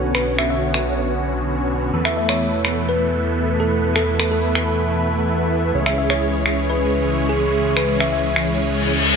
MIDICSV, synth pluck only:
0, 0, Header, 1, 2, 480
1, 0, Start_track
1, 0, Tempo, 476190
1, 29, Time_signature, 4, 2, 24, 8
1, 9235, End_track
2, 0, Start_track
2, 0, Title_t, "Synth pluck"
2, 0, Program_c, 0, 84
2, 147, Note_on_c, 0, 71, 90
2, 267, Note_off_c, 0, 71, 0
2, 388, Note_on_c, 0, 76, 91
2, 465, Note_off_c, 0, 76, 0
2, 506, Note_on_c, 0, 76, 74
2, 584, Note_off_c, 0, 76, 0
2, 2066, Note_on_c, 0, 76, 85
2, 2145, Note_off_c, 0, 76, 0
2, 2189, Note_on_c, 0, 76, 74
2, 2266, Note_off_c, 0, 76, 0
2, 2308, Note_on_c, 0, 73, 91
2, 2789, Note_off_c, 0, 73, 0
2, 2909, Note_on_c, 0, 71, 90
2, 3027, Note_off_c, 0, 71, 0
2, 3627, Note_on_c, 0, 69, 92
2, 3747, Note_off_c, 0, 69, 0
2, 3991, Note_on_c, 0, 69, 88
2, 4206, Note_off_c, 0, 69, 0
2, 4229, Note_on_c, 0, 69, 90
2, 4306, Note_off_c, 0, 69, 0
2, 4348, Note_on_c, 0, 69, 73
2, 4425, Note_off_c, 0, 69, 0
2, 5909, Note_on_c, 0, 76, 85
2, 5986, Note_off_c, 0, 76, 0
2, 6027, Note_on_c, 0, 76, 75
2, 6105, Note_off_c, 0, 76, 0
2, 6150, Note_on_c, 0, 73, 91
2, 6629, Note_off_c, 0, 73, 0
2, 6749, Note_on_c, 0, 71, 86
2, 6867, Note_off_c, 0, 71, 0
2, 7349, Note_on_c, 0, 68, 88
2, 7468, Note_off_c, 0, 68, 0
2, 7828, Note_on_c, 0, 71, 90
2, 7947, Note_off_c, 0, 71, 0
2, 8069, Note_on_c, 0, 76, 87
2, 8146, Note_off_c, 0, 76, 0
2, 8189, Note_on_c, 0, 76, 75
2, 8266, Note_off_c, 0, 76, 0
2, 9235, End_track
0, 0, End_of_file